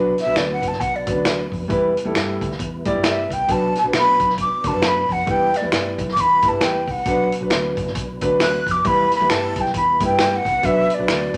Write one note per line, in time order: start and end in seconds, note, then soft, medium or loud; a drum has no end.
0.00 0.13 B1 loud
0.00 0.10 F#3 medium
0.00 1.68 F#3 medium
0.00 1.68 B3 medium
0.00 0.11 D4 medium
0.00 1.68 D4 medium
0.00 0.11 B4 loud
0.00 3.45 B4 medium
0.18 0.38 E5 medium
0.18 snare soft
0.18 closed hi-hat medium
0.26 0.34 B1 medium
0.26 0.67 F#3 medium
0.26 0.67 D4 medium
0.26 0.67 B4 medium
0.35 0.58 D2 medium
0.35 0.51 D5 medium
0.35 finger snap medium
0.35 snare loud
0.35 closed hi-hat medium
0.52 0.69 F#5 medium
0.62 0.80 F#1 medium
0.62 kick medium
0.62 closed hi-hat medium
0.68 0.82 A5 medium
0.72 snare soft
0.80 1.03 B1 loud
0.80 0.97 F#5 medium
0.80 kick medium
0.80 closed hi-hat medium
0.96 1.40 D5 medium
1.06 1.44 D2 medium
1.06 1.38 F#3 medium
1.06 1.11 C#4 soft
1.06 1.39 B4 medium
1.06 kick loud
1.06 closed hi-hat loud
1.11 1.41 D4 medium
1.25 finger snap medium
1.25 snare loud
1.25 closed hi-hat loud
1.52 1.67 F2 medium
1.52 kick medium
1.52 open hi-hat soft
1.68 1.92 E2 loud
1.68 1.89 G3 medium
1.68 3.47 G3 medium
1.68 7.02 B3 medium
1.68 1.90 E4 medium
1.68 3.47 E4 medium
1.68 1.90 B4 loud
1.68 kick loud
1.68 closed hi-hat medium
1.97 closed hi-hat medium
2.05 2.13 E2 medium
2.05 2.46 G3 medium
2.05 2.46 E4 medium
2.05 2.46 A4 medium
2.14 2.37 G2 loud
2.14 finger snap medium
2.14 snare loud
2.14 closed hi-hat medium
2.41 2.56 D2 medium
2.41 kick medium
2.41 closed hi-hat medium
2.51 snare soft
2.59 2.89 E2 loud
2.59 kick medium
2.59 closed hi-hat medium
2.85 3.17 G3 medium
2.85 3.17 E4 medium
2.85 3.18 D5 loud
2.85 kick loud
2.85 closed hi-hat medium
2.95 3.25 G2 medium
3.03 3.34 E5 medium
3.03 finger snap medium
3.03 snare loud
3.03 closed hi-hat loud
3.30 3.45 C2 medium
3.30 3.53 G5 medium
3.30 kick medium
3.30 closed hi-hat medium
3.48 3.71 B1 loud
3.48 3.68 F#3 medium
3.48 5.25 F#3 medium
3.48 5.25 D4 medium
3.48 3.69 D4 medium
3.48 11.37 B4 medium
3.48 3.69 B4 medium
3.48 3.77 A5 loud
3.48 kick loud
3.48 closed hi-hat medium
3.75 3.85 A5 loud
3.75 snare soft
3.75 closed hi-hat medium
3.84 3.91 B1 medium
3.84 4.25 F#3 medium
3.84 4.25 D4 medium
3.84 4.25 B4 medium
3.93 4.15 B2 medium
3.93 finger snap loud
3.93 snare loud
3.93 closed hi-hat medium
3.98 4.37 B5 loud
4.20 4.46 B1 medium
4.20 kick medium
4.20 closed hi-hat medium
4.29 snare soft
4.38 4.69 D6 medium
4.38 kick medium
4.38 closed hi-hat medium
4.64 4.72 D2 medium
4.64 4.96 F#3 medium
4.64 4.96 D4 medium
4.64 4.69 A#4 medium
4.64 4.84 A5 loud
4.64 kick loud
4.64 closed hi-hat medium
4.71 5.04 F#2 medium
4.71 4.99 B4 medium
4.82 finger snap medium
4.82 snare loud
4.82 closed hi-hat loud
4.87 5.14 B5 medium
5.09 5.24 F2 medium
5.09 5.32 F#5 medium
5.09 kick medium
5.09 open hi-hat soft
5.26 5.49 E2 loud
5.26 5.47 G3 medium
5.26 7.05 G3 medium
5.26 5.47 E4 medium
5.26 7.05 E4 medium
5.26 5.48 B4 medium
5.26 kick loud
5.26 closed hi-hat medium
5.31 5.58 G5 loud
5.54 6.00 D5 medium
5.54 snare soft
5.54 closed hi-hat medium
5.62 5.71 E2 medium
5.62 6.03 G3 medium
5.62 6.03 E4 medium
5.62 6.04 B4 medium
5.72 5.94 G2 medium
5.72 finger snap medium
5.72 snare loud
5.72 closed hi-hat medium
5.98 6.13 B1 medium
5.98 kick loud
5.98 closed hi-hat medium
6.08 snare soft
6.13 6.39 E2 medium
6.13 6.22 D6 medium
6.13 kick medium
6.13 closed hi-hat loud
6.20 6.50 B5 loud
6.42 6.58 G2 loud
6.42 6.75 G3 medium
6.42 6.75 E4 medium
6.42 6.76 B4 medium
6.42 kick loud
6.42 closed hi-hat medium
6.48 6.64 A5 medium
6.61 6.83 E2 medium
6.61 6.92 G5 medium
6.61 finger snap medium
6.61 snare loud
6.61 closed hi-hat loud
6.87 6.95 C2 loud
6.87 7.36 F#5 medium
6.87 kick medium
6.87 open hi-hat soft
7.05 7.28 B1 loud
7.05 7.26 F#3 medium
7.05 8.83 F#3 medium
7.05 11.37 B3 medium
7.05 7.26 D4 medium
7.05 8.83 D4 medium
7.05 7.27 B4 medium
7.05 kick loud
7.05 closed hi-hat medium
7.32 closed hi-hat medium
7.41 7.49 B1 medium
7.41 7.82 F#3 medium
7.41 7.82 D4 medium
7.41 7.83 B4 medium
7.50 7.73 D2 medium
7.50 finger snap medium
7.50 snare loud
7.50 closed hi-hat medium
7.77 7.95 F#1 loud
7.77 kick medium
7.77 closed hi-hat medium
7.86 snare soft
7.95 8.17 B1 loud
7.95 kick loud
7.95 closed hi-hat medium
8.21 8.59 D2 medium
8.21 8.53 F#3 medium
8.21 8.53 D4 medium
8.21 8.54 B4 loud
8.21 kick loud
8.21 closed hi-hat medium
8.40 8.73 F#6 loud
8.40 finger snap medium
8.40 snare loud
8.40 closed hi-hat loud
8.66 8.81 F2 medium
8.66 kick medium
8.66 closed hi-hat medium
8.71 8.88 D6 medium
8.84 9.07 E2 loud
8.84 10.61 G3 medium
8.84 9.05 G3 medium
8.84 10.61 E4 medium
8.84 9.05 E4 medium
8.84 9.06 B4 medium
8.84 9.15 B5 loud
8.84 kick loud
8.84 closed hi-hat medium
9.12 9.32 B5 medium
9.12 snare soft
9.12 closed hi-hat medium
9.20 9.28 E2 loud
9.20 9.61 G3 medium
9.20 9.61 E4 medium
9.20 9.62 B4 medium
9.29 9.52 G2 medium
9.29 9.62 A5 loud
9.29 finger snap medium
9.29 snare loud
9.29 closed hi-hat medium
9.56 9.71 B1 medium
9.56 kick medium
9.56 closed hi-hat medium
9.61 9.75 G5 medium
9.65 snare soft
9.73 9.96 E2 loud
9.73 10.03 B5 medium
9.73 kick loud
9.73 closed hi-hat medium
10.00 10.38 G2 loud
10.00 10.32 G3 medium
10.00 10.33 E4 medium
10.00 10.33 B4 medium
10.00 kick loud
10.00 closed hi-hat loud
10.05 10.38 G5 medium
10.19 finger snap medium
10.19 snare loud
10.19 closed hi-hat medium
10.36 10.67 F#5 loud
10.45 10.60 C2 medium
10.45 kick medium
10.45 closed hi-hat medium
10.62 10.85 B1 loud
10.62 10.83 F#3 medium
10.62 11.37 F#3 medium
10.62 11.37 D4 medium
10.62 10.83 D4 medium
10.62 10.84 B4 medium
10.62 10.96 E5 loud
10.62 kick loud
10.62 closed hi-hat medium
10.90 closed hi-hat medium
10.94 11.37 F#3 medium
10.94 11.37 D5 medium
10.99 11.06 B1 medium
10.99 11.37 D4 medium
10.99 11.37 B4 medium
11.07 11.30 D2 medium
11.07 finger snap medium
11.07 snare loud
11.07 closed hi-hat medium